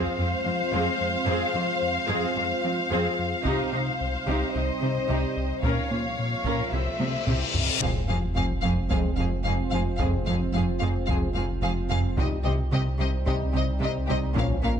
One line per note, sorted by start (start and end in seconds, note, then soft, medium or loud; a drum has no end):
0.00 3.45 G#3 medium
0.00 0.16 C4 medium
0.00 3.44 C4 medium
0.00 3.41 F4 medium
0.00 0.17 G#4 medium
0.00 3.42 C5 medium
0.00 3.45 C5 medium
0.00 4.51 F5 medium
0.18 0.26 F2 soft
0.18 0.35 F2 medium
0.18 0.27 C4 medium
0.18 0.27 F4 soft
0.45 0.53 F2 soft
0.45 0.62 F3 medium
0.45 0.54 C4 soft
0.72 0.80 F2 medium
0.72 0.89 F2 medium
0.72 0.98 C4 medium
0.72 0.98 G#4 medium
1.01 1.17 F2 medium
1.26 1.34 F2 medium
1.26 1.44 F2 medium
1.26 1.53 C4 medium
1.26 1.53 G#4 medium
1.53 1.61 F2 soft
1.53 1.71 F3 medium
1.53 1.63 C4 soft
1.53 1.63 F4 soft
1.82 1.98 F2 medium
2.09 2.17 F2 medium
2.09 2.26 F2 medium
2.09 2.34 C4 medium
2.09 2.34 G#4 medium
2.36 2.44 F2 soft
2.36 2.53 F2 medium
2.36 2.45 C4 soft
2.36 2.45 F4 medium
2.64 2.72 F2 soft
2.64 2.80 F3 medium
2.64 2.72 C4 soft
2.91 2.99 F2 medium
2.91 3.08 F2 medium
2.91 3.16 C4 medium
2.91 3.16 G#4 medium
3.19 3.35 F2 medium
3.45 3.62 C2 medium
3.45 3.53 C3 medium
3.45 5.64 G3 medium
3.45 5.60 C4 medium
3.45 3.70 D#4 medium
3.45 5.64 D#4 medium
3.45 3.70 G4 medium
3.45 5.59 C5 medium
3.45 5.60 C5 medium
3.45 taiko medium
3.73 3.81 C3 soft
3.73 3.90 C3 soft
3.73 3.81 D#4 soft
4.01 4.17 C2 soft
4.28 4.44 C2 medium
4.28 4.36 C3 medium
4.28 4.53 D#4 medium
4.28 4.53 G4 medium
4.54 4.71 C2 medium
4.54 4.63 C3 soft
4.54 4.64 D#4 soft
4.54 5.63 D#5 soft
4.82 4.90 C3 soft
4.82 4.99 C3 medium
4.82 4.91 C4 soft
4.82 4.91 D#4 soft
5.09 5.26 C2 medium
5.09 5.17 C3 medium
5.09 5.35 D#4 soft
5.09 5.35 G4 medium
5.37 5.53 C2 medium
5.63 5.71 A#2 soft
5.63 5.80 A#2 medium
5.63 6.72 F3 medium
5.63 6.72 A#3 medium
5.63 5.89 C#4 medium
5.63 6.73 F4 medium
5.63 5.89 A#4 soft
5.63 6.72 C#5 medium
5.63 6.71 C#5 soft
5.63 6.71 F5 soft
5.63 taiko medium
5.63 reverse cymbal medium
5.91 5.99 A#2 soft
5.91 6.07 A#3 medium
5.91 6.00 C#4 soft
5.91 6.00 F4 soft
6.19 6.35 A#2 soft
6.45 6.62 A#2 medium
6.45 6.53 A#2 soft
6.45 6.70 C#4 soft
6.45 6.71 A#4 soft
6.45 taiko medium
6.72 6.89 C2 soft
6.72 6.81 C3 soft
6.72 7.82 G3 medium
6.72 6.81 C4 soft
6.72 7.81 C4 medium
6.72 6.80 E4 soft
6.72 7.82 E4 medium
6.72 7.80 C5 medium
6.72 7.60 C5 soft
6.72 7.61 E5 soft
7.00 7.08 C3 soft
7.00 7.16 C3 medium
7.00 7.08 C4 soft
7.00 taiko high medium
7.26 7.43 C2 medium
7.26 7.35 C3 soft
7.26 7.52 C4 soft
7.26 7.52 G4 soft
7.26 taiko low-mid medium
7.54 7.71 C2 medium
7.54 taiko low medium
7.80 7.89 F1 soft
7.80 12.20 F1 medium
7.80 7.98 F2 medium
7.80 7.90 F2 medium
7.80 8.00 G#3 soft
7.80 12.14 G#3 medium
7.80 7.89 C4 medium
7.80 8.00 C4 soft
7.80 12.14 C4 medium
7.80 12.14 F4 medium
7.80 7.89 G#4 soft
7.80 12.14 C5 medium
7.80 7.91 F5 soft
7.80 taiko medium
7.80 sub drop medium
8.08 8.16 F1 medium
8.08 8.17 F2 soft
8.08 8.26 F3 medium
8.08 8.16 C4 soft
8.08 8.17 G#4 soft
8.08 8.16 F5 soft
8.35 8.44 F1 medium
8.35 8.44 F2 soft
8.35 8.53 F3 soft
8.35 8.44 C4 soft
8.35 8.45 G#4 soft
8.35 8.43 F5 soft
8.62 8.71 F1 medium
8.62 8.72 F2 medium
8.62 8.80 F2 medium
8.62 8.72 C4 soft
8.62 8.72 G#4 soft
8.62 8.70 F5 soft
8.90 8.98 F1 soft
8.90 8.99 F2 soft
8.90 9.07 F2 medium
8.90 9.10 G#3 medium
8.90 8.99 C4 medium
8.90 9.10 C4 medium
8.90 8.99 G#4 soft
8.90 8.98 F5 soft
8.90 taiko medium
9.16 9.26 F1 soft
9.16 9.26 F2 soft
9.16 9.34 F3 medium
9.16 9.26 C4 soft
9.16 9.28 G#4 soft
9.16 9.24 F5 soft
9.44 9.53 F1 soft
9.44 9.53 F2 soft
9.44 9.62 F2 medium
9.44 9.53 C4 soft
9.44 9.55 G#4 soft
9.44 9.52 F5 soft
9.70 9.81 F1 medium
9.70 9.80 F2 soft
9.70 9.89 F2 medium
9.70 9.81 C4 soft
9.70 9.82 G#4 soft
9.70 9.78 F5 soft
9.97 10.08 F1 medium
9.97 10.07 F2 medium
9.97 10.16 F2 medium
9.97 10.18 G#3 medium
9.97 10.19 C4 soft
9.97 10.08 C4 soft
9.97 10.09 G#4 soft
9.97 10.05 F5 soft
9.97 taiko medium
10.26 10.35 F1 medium
10.26 10.35 F2 soft
10.26 10.43 F3 soft
10.26 10.35 C4 soft
10.26 10.37 G#4 soft
10.26 10.34 F5 soft
10.53 10.61 F1 medium
10.53 10.62 F2 soft
10.53 10.71 F3 soft
10.53 10.62 C4 soft
10.53 10.64 G#4 soft
10.53 10.61 F5 soft
10.79 10.90 F1 medium
10.79 10.98 F2 medium
10.79 10.90 F2 medium
10.79 10.89 C4 medium
10.79 10.87 F5 soft
10.83 10.91 G#4 soft
11.07 11.17 F1 soft
11.07 11.25 F2 medium
11.07 11.17 F2 medium
11.07 11.29 G#3 medium
11.07 11.16 C4 medium
11.07 11.29 C4 medium
11.07 11.18 G#4 medium
11.07 11.15 F5 medium
11.07 taiko medium
11.35 11.43 F1 medium
11.35 11.44 F2 medium
11.35 11.53 F3 medium
11.35 11.44 C4 soft
11.35 11.45 G#4 soft
11.35 11.43 F5 soft
11.62 11.70 F1 soft
11.62 11.71 F2 medium
11.62 11.81 F2 medium
11.62 11.70 C4 soft
11.62 11.71 G#4 medium
11.62 11.70 F5 soft
11.90 11.99 F1 medium
11.90 12.07 F2 medium
11.90 11.99 F2 soft
11.90 11.98 C4 soft
11.90 11.98 G#4 medium
11.90 11.98 F5 medium
12.17 12.34 C2 medium
12.17 12.26 C2 medium
12.17 14.37 C2 medium
12.17 12.26 C3 medium
12.17 12.37 G3 medium
12.17 14.36 G3 medium
12.17 12.26 C4 medium
12.17 14.32 C4 medium
12.17 12.36 D#4 medium
12.17 14.36 D#4 medium
12.17 12.26 G4 medium
12.17 14.32 C5 medium
12.17 12.28 D#5 soft
12.17 taiko medium
12.44 12.53 C2 medium
12.44 12.53 C3 medium
12.44 12.62 C3 medium
12.44 12.54 C4 soft
12.44 12.52 G4 soft
12.44 12.53 D#5 soft
12.72 12.81 C2 medium
12.72 12.89 C3 medium
12.72 12.80 C3 medium
12.72 12.82 C4 medium
12.72 12.81 G4 medium
12.72 12.81 D#5 medium
12.99 13.16 C2 medium
12.99 13.08 C2 medium
12.99 13.08 C3 medium
12.99 13.09 C4 soft
12.99 13.07 G4 soft
12.99 13.08 D#5 soft
13.26 13.34 C2 medium
13.26 13.44 C2 medium
13.26 13.35 C3 medium
13.26 13.45 G3 medium
13.26 13.36 C4 medium
13.26 13.46 D#4 medium
13.26 13.35 G4 medium
13.26 13.35 D#5 medium
13.26 taiko medium
13.52 13.62 C2 medium
13.52 13.70 C3 medium
13.52 13.62 C3 medium
13.52 13.63 C4 soft
13.52 13.60 G4 soft
13.52 13.64 D#5 medium
13.81 13.98 C2 medium
13.81 13.90 C2 medium
13.81 13.89 C3 medium
13.81 13.89 C4 medium
13.81 13.89 G4 medium
13.81 13.91 D#5 medium
14.07 14.17 C2 medium
14.07 14.26 C2 medium
14.07 14.16 C3 medium
14.07 14.16 C4 medium
14.07 14.15 G4 medium
14.07 14.17 D#5 medium
14.34 14.44 A#1 medium
14.34 14.80 A#1 medium
14.34 14.43 A#2 medium
14.34 14.52 A#2 medium
14.34 14.55 F3 medium
14.34 14.80 A#3 medium
14.34 14.42 C#4 medium
14.34 14.80 C#4 medium
14.34 14.55 C#4 medium
14.34 14.80 F4 medium
14.34 14.44 A#4 medium
14.34 14.80 A#4 medium
14.34 14.46 F5 medium
14.34 taiko medium
14.62 14.72 A#1 medium
14.62 14.71 A#2 medium
14.62 14.80 A#3 medium
14.62 14.70 C#4 medium
14.62 14.72 A#4 medium
14.62 14.72 F5 medium